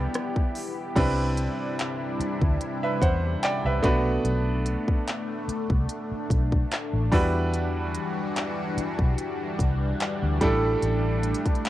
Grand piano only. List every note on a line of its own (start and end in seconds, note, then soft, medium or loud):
0.00 0.96 G3 medium
0.00 0.98 B3 medium
0.00 0.97 D4 medium
0.00 0.97 E4 medium
0.00 0.43 G4 medium
0.00 0.98 B4 loud
0.96 2.26 G3 medium
0.96 2.26 C4 medium
0.96 2.27 D4 medium
0.96 2.27 E4 medium
0.96 2.27 B4 medium
2.83 3.01 B4 medium
2.83 3.01 E5 medium
3.02 3.41 C5 medium
3.02 3.41 F#5 medium
3.43 3.64 D5 medium
3.43 3.64 G5 medium
3.66 3.83 B4 medium
3.66 4.04 E5 medium
3.83 5.15 A3 medium
3.83 5.16 B3 medium
3.83 5.16 D4 medium
3.83 5.16 F#4 medium
3.83 5.17 B4 loud
7.12 8.44 G3 medium
7.12 8.45 D4 medium
7.12 8.45 E4 medium
7.12 8.45 F#4 medium
7.12 8.45 B4 loud
10.41 11.69 G3 medium
10.41 11.69 A3 medium
10.41 11.69 D4 medium
10.41 11.69 E4 medium
10.41 11.69 A4 medium